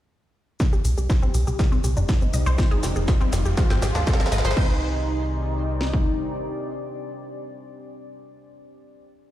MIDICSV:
0, 0, Header, 1, 8, 480
1, 0, Start_track
1, 0, Key_signature, -3, "minor"
1, 0, Tempo, 495868
1, 582, Time_signature, 4, 2, 24, 8
1, 9014, End_track
2, 0, Start_track
2, 0, Title_t, "Ambient pad"
2, 0, Program_c, 0, 92
2, 580, Note_on_c, 0, 72, 78
2, 580, Note_on_c, 0, 75, 71
2, 580, Note_on_c, 0, 86, 84
2, 2481, Note_off_c, 0, 72, 0
2, 2481, Note_off_c, 0, 86, 0
2, 2482, Note_off_c, 0, 75, 0
2, 2500, Note_on_c, 0, 77, 72
2, 2500, Note_on_c, 0, 80, 79
2, 2500, Note_on_c, 0, 84, 91
2, 3451, Note_off_c, 0, 77, 0
2, 3461, Note_on_c, 0, 75, 71
2, 4401, Note_off_c, 0, 84, 0
2, 4402, Note_off_c, 0, 80, 0
2, 4412, Note_off_c, 0, 75, 0
2, 4421, Note_on_c, 0, 60, 83
2, 4421, Note_on_c, 0, 67, 76
2, 4421, Note_on_c, 0, 74, 93
2, 7360, Note_off_c, 0, 60, 0
2, 7360, Note_off_c, 0, 74, 0
2, 7361, Note_off_c, 0, 67, 0
2, 9014, End_track
3, 0, Start_track
3, 0, Title_t, "Synth arpeggio sound"
3, 0, Program_c, 1, 84
3, 580, Note_on_c, 1, 60, 80
3, 634, Note_off_c, 1, 60, 0
3, 704, Note_on_c, 1, 67, 102
3, 809, Note_off_c, 1, 67, 0
3, 821, Note_on_c, 1, 67, 73
3, 910, Note_off_c, 1, 67, 0
3, 945, Note_on_c, 1, 67, 77
3, 1028, Note_off_c, 1, 67, 0
3, 1061, Note_on_c, 1, 72, 81
3, 1114, Note_off_c, 1, 72, 0
3, 1185, Note_on_c, 1, 60, 98
3, 1295, Note_off_c, 1, 60, 0
3, 1302, Note_on_c, 1, 67, 73
3, 1390, Note_off_c, 1, 67, 0
3, 1425, Note_on_c, 1, 67, 76
3, 1508, Note_off_c, 1, 67, 0
3, 1541, Note_on_c, 1, 72, 82
3, 1594, Note_off_c, 1, 72, 0
3, 1664, Note_on_c, 1, 60, 101
3, 1715, Note_off_c, 1, 60, 0
3, 1781, Note_on_c, 1, 67, 76
3, 1870, Note_off_c, 1, 67, 0
3, 1905, Note_on_c, 1, 62, 77
3, 1955, Note_off_c, 1, 62, 0
3, 2021, Note_on_c, 1, 60, 80
3, 2110, Note_off_c, 1, 60, 0
3, 2145, Note_on_c, 1, 60, 76
3, 2195, Note_off_c, 1, 60, 0
3, 2261, Note_on_c, 1, 75, 77
3, 2314, Note_off_c, 1, 75, 0
3, 2385, Note_on_c, 1, 72, 104
3, 2468, Note_off_c, 1, 72, 0
3, 2501, Note_on_c, 1, 60, 83
3, 2554, Note_off_c, 1, 60, 0
3, 2625, Note_on_c, 1, 68, 103
3, 2736, Note_off_c, 1, 68, 0
3, 2741, Note_on_c, 1, 67, 78
3, 2830, Note_off_c, 1, 67, 0
3, 2864, Note_on_c, 1, 68, 77
3, 2948, Note_off_c, 1, 68, 0
3, 2980, Note_on_c, 1, 72, 83
3, 3034, Note_off_c, 1, 72, 0
3, 3105, Note_on_c, 1, 60, 101
3, 3215, Note_off_c, 1, 60, 0
3, 3221, Note_on_c, 1, 67, 80
3, 3310, Note_off_c, 1, 67, 0
3, 3344, Note_on_c, 1, 67, 77
3, 3428, Note_off_c, 1, 67, 0
3, 3461, Note_on_c, 1, 72, 83
3, 3514, Note_off_c, 1, 72, 0
3, 3585, Note_on_c, 1, 60, 105
3, 3635, Note_off_c, 1, 60, 0
3, 3701, Note_on_c, 1, 67, 77
3, 3790, Note_off_c, 1, 67, 0
3, 3825, Note_on_c, 1, 62, 77
3, 3875, Note_off_c, 1, 62, 0
3, 3941, Note_on_c, 1, 60, 83
3, 4030, Note_off_c, 1, 60, 0
3, 4065, Note_on_c, 1, 60, 76
3, 4115, Note_off_c, 1, 60, 0
3, 4181, Note_on_c, 1, 75, 78
3, 4234, Note_off_c, 1, 75, 0
3, 4305, Note_on_c, 1, 72, 105
3, 4388, Note_off_c, 1, 72, 0
3, 4422, Note_on_c, 1, 60, 96
3, 4645, Note_off_c, 1, 60, 0
3, 9014, End_track
4, 0, Start_track
4, 0, Title_t, "Analog synth lead"
4, 0, Program_c, 2, 81
4, 580, Note_on_c, 2, 67, 110
4, 2020, Note_on_c, 2, 63, 107
4, 2034, Note_off_c, 2, 67, 0
4, 3368, Note_off_c, 2, 63, 0
4, 3460, Note_on_c, 2, 65, 102
4, 4328, Note_off_c, 2, 65, 0
4, 4420, Note_on_c, 2, 63, 104
4, 7359, Note_off_c, 2, 63, 0
4, 9014, End_track
5, 0, Start_track
5, 0, Title_t, "Synth drone"
5, 0, Program_c, 3, 95
5, 582, Note_on_c, 3, 48, 74
5, 582, Note_on_c, 3, 55, 76
5, 4410, Note_off_c, 3, 48, 0
5, 4410, Note_off_c, 3, 55, 0
5, 4421, Note_on_c, 3, 48, 79
5, 4422, Note_on_c, 3, 55, 77
5, 7361, Note_off_c, 3, 48, 0
5, 7361, Note_off_c, 3, 55, 0
5, 9014, End_track
6, 0, Start_track
6, 0, Title_t, "Analog synth bass"
6, 0, Program_c, 4, 38
6, 821, Note_on_c, 4, 36, 86
6, 919, Note_off_c, 4, 36, 0
6, 946, Note_on_c, 4, 36, 79
6, 1037, Note_off_c, 4, 36, 0
6, 1302, Note_on_c, 4, 36, 90
6, 1399, Note_off_c, 4, 36, 0
6, 1425, Note_on_c, 4, 36, 82
6, 1517, Note_off_c, 4, 36, 0
6, 1666, Note_on_c, 4, 36, 73
6, 1757, Note_off_c, 4, 36, 0
6, 1782, Note_on_c, 4, 36, 92
6, 1879, Note_off_c, 4, 36, 0
6, 1905, Note_on_c, 4, 31, 84
6, 1997, Note_off_c, 4, 31, 0
6, 2262, Note_on_c, 4, 36, 89
6, 2359, Note_off_c, 4, 36, 0
6, 2385, Note_on_c, 4, 36, 82
6, 2476, Note_off_c, 4, 36, 0
6, 2741, Note_on_c, 4, 29, 92
6, 2839, Note_off_c, 4, 29, 0
6, 2865, Note_on_c, 4, 29, 83
6, 2957, Note_off_c, 4, 29, 0
6, 3222, Note_on_c, 4, 29, 90
6, 3319, Note_off_c, 4, 29, 0
6, 3345, Note_on_c, 4, 29, 84
6, 3437, Note_off_c, 4, 29, 0
6, 3586, Note_on_c, 4, 32, 77
6, 3677, Note_off_c, 4, 32, 0
6, 3702, Note_on_c, 4, 32, 97
6, 3799, Note_off_c, 4, 32, 0
6, 3826, Note_on_c, 4, 39, 85
6, 3917, Note_off_c, 4, 39, 0
6, 4182, Note_on_c, 4, 32, 96
6, 4279, Note_off_c, 4, 32, 0
6, 4305, Note_on_c, 4, 32, 85
6, 4397, Note_off_c, 4, 32, 0
6, 9014, End_track
7, 0, Start_track
7, 0, Title_t, "Riser"
7, 0, Program_c, 5, 103
7, 581, Note_on_c, 5, 60, 79
7, 4421, Note_off_c, 5, 60, 0
7, 9014, End_track
8, 0, Start_track
8, 0, Title_t, "Drums"
8, 581, Note_on_c, 9, 36, 115
8, 582, Note_on_c, 9, 38, 45
8, 582, Note_on_c, 9, 82, 44
8, 678, Note_off_c, 9, 36, 0
8, 678, Note_off_c, 9, 38, 0
8, 678, Note_off_c, 9, 82, 0
8, 706, Note_on_c, 9, 82, 22
8, 802, Note_off_c, 9, 82, 0
8, 822, Note_on_c, 9, 46, 100
8, 822, Note_on_c, 9, 82, 78
8, 919, Note_off_c, 9, 46, 0
8, 919, Note_off_c, 9, 82, 0
8, 945, Note_on_c, 9, 82, 35
8, 1042, Note_off_c, 9, 82, 0
8, 1061, Note_on_c, 9, 36, 116
8, 1062, Note_on_c, 9, 38, 49
8, 1062, Note_on_c, 9, 82, 45
8, 1158, Note_off_c, 9, 36, 0
8, 1159, Note_off_c, 9, 38, 0
8, 1159, Note_off_c, 9, 82, 0
8, 1185, Note_on_c, 9, 82, 22
8, 1282, Note_off_c, 9, 82, 0
8, 1301, Note_on_c, 9, 46, 101
8, 1301, Note_on_c, 9, 82, 78
8, 1398, Note_off_c, 9, 46, 0
8, 1398, Note_off_c, 9, 82, 0
8, 1425, Note_on_c, 9, 82, 32
8, 1522, Note_off_c, 9, 82, 0
8, 1541, Note_on_c, 9, 36, 113
8, 1541, Note_on_c, 9, 38, 55
8, 1541, Note_on_c, 9, 82, 44
8, 1638, Note_off_c, 9, 36, 0
8, 1638, Note_off_c, 9, 38, 0
8, 1638, Note_off_c, 9, 82, 0
8, 1665, Note_on_c, 9, 82, 23
8, 1762, Note_off_c, 9, 82, 0
8, 1781, Note_on_c, 9, 46, 101
8, 1781, Note_on_c, 9, 82, 79
8, 1878, Note_off_c, 9, 46, 0
8, 1878, Note_off_c, 9, 82, 0
8, 1905, Note_on_c, 9, 82, 34
8, 2002, Note_off_c, 9, 82, 0
8, 2021, Note_on_c, 9, 36, 119
8, 2021, Note_on_c, 9, 38, 64
8, 2021, Note_on_c, 9, 82, 46
8, 2118, Note_off_c, 9, 36, 0
8, 2118, Note_off_c, 9, 38, 0
8, 2118, Note_off_c, 9, 82, 0
8, 2145, Note_on_c, 9, 82, 24
8, 2242, Note_off_c, 9, 82, 0
8, 2261, Note_on_c, 9, 46, 107
8, 2261, Note_on_c, 9, 82, 80
8, 2358, Note_off_c, 9, 46, 0
8, 2358, Note_off_c, 9, 82, 0
8, 2385, Note_on_c, 9, 82, 32
8, 2482, Note_off_c, 9, 82, 0
8, 2501, Note_on_c, 9, 36, 122
8, 2502, Note_on_c, 9, 38, 69
8, 2502, Note_on_c, 9, 82, 44
8, 2598, Note_off_c, 9, 36, 0
8, 2598, Note_off_c, 9, 38, 0
8, 2598, Note_off_c, 9, 82, 0
8, 2625, Note_on_c, 9, 82, 22
8, 2722, Note_off_c, 9, 82, 0
8, 2741, Note_on_c, 9, 38, 78
8, 2741, Note_on_c, 9, 46, 109
8, 2741, Note_on_c, 9, 82, 80
8, 2838, Note_off_c, 9, 38, 0
8, 2838, Note_off_c, 9, 46, 0
8, 2838, Note_off_c, 9, 82, 0
8, 2865, Note_on_c, 9, 82, 33
8, 2962, Note_off_c, 9, 82, 0
8, 2981, Note_on_c, 9, 36, 127
8, 2981, Note_on_c, 9, 38, 82
8, 2981, Note_on_c, 9, 82, 45
8, 3078, Note_off_c, 9, 36, 0
8, 3078, Note_off_c, 9, 38, 0
8, 3078, Note_off_c, 9, 82, 0
8, 3105, Note_on_c, 9, 82, 22
8, 3202, Note_off_c, 9, 82, 0
8, 3221, Note_on_c, 9, 38, 91
8, 3221, Note_on_c, 9, 46, 108
8, 3221, Note_on_c, 9, 82, 82
8, 3318, Note_off_c, 9, 38, 0
8, 3318, Note_off_c, 9, 46, 0
8, 3318, Note_off_c, 9, 82, 0
8, 3344, Note_on_c, 9, 82, 34
8, 3441, Note_off_c, 9, 82, 0
8, 3460, Note_on_c, 9, 38, 94
8, 3460, Note_on_c, 9, 82, 45
8, 3461, Note_on_c, 9, 36, 122
8, 3557, Note_off_c, 9, 38, 0
8, 3557, Note_off_c, 9, 82, 0
8, 3558, Note_off_c, 9, 36, 0
8, 3585, Note_on_c, 9, 38, 82
8, 3585, Note_on_c, 9, 82, 22
8, 3681, Note_off_c, 9, 38, 0
8, 3681, Note_off_c, 9, 82, 0
8, 3701, Note_on_c, 9, 38, 98
8, 3701, Note_on_c, 9, 46, 109
8, 3701, Note_on_c, 9, 82, 81
8, 3798, Note_off_c, 9, 38, 0
8, 3798, Note_off_c, 9, 46, 0
8, 3798, Note_off_c, 9, 82, 0
8, 3824, Note_on_c, 9, 38, 90
8, 3824, Note_on_c, 9, 82, 34
8, 3921, Note_off_c, 9, 38, 0
8, 3921, Note_off_c, 9, 82, 0
8, 3941, Note_on_c, 9, 36, 124
8, 3941, Note_on_c, 9, 38, 99
8, 3941, Note_on_c, 9, 82, 47
8, 4002, Note_off_c, 9, 38, 0
8, 4002, Note_on_c, 9, 38, 91
8, 4037, Note_off_c, 9, 82, 0
8, 4038, Note_off_c, 9, 36, 0
8, 4065, Note_off_c, 9, 38, 0
8, 4065, Note_on_c, 9, 38, 91
8, 4065, Note_on_c, 9, 82, 23
8, 4123, Note_off_c, 9, 38, 0
8, 4123, Note_on_c, 9, 38, 96
8, 4162, Note_off_c, 9, 82, 0
8, 4181, Note_off_c, 9, 38, 0
8, 4181, Note_on_c, 9, 38, 104
8, 4181, Note_on_c, 9, 46, 114
8, 4181, Note_on_c, 9, 82, 81
8, 4243, Note_off_c, 9, 38, 0
8, 4243, Note_on_c, 9, 38, 98
8, 4278, Note_off_c, 9, 46, 0
8, 4278, Note_off_c, 9, 82, 0
8, 4305, Note_off_c, 9, 38, 0
8, 4305, Note_on_c, 9, 38, 93
8, 4305, Note_on_c, 9, 82, 32
8, 4363, Note_off_c, 9, 38, 0
8, 4363, Note_on_c, 9, 38, 93
8, 4401, Note_off_c, 9, 82, 0
8, 4421, Note_on_c, 9, 49, 81
8, 4422, Note_on_c, 9, 36, 117
8, 4460, Note_off_c, 9, 38, 0
8, 4518, Note_off_c, 9, 36, 0
8, 4518, Note_off_c, 9, 49, 0
8, 5622, Note_on_c, 9, 38, 61
8, 5718, Note_off_c, 9, 38, 0
8, 5745, Note_on_c, 9, 36, 78
8, 5842, Note_off_c, 9, 36, 0
8, 9014, End_track
0, 0, End_of_file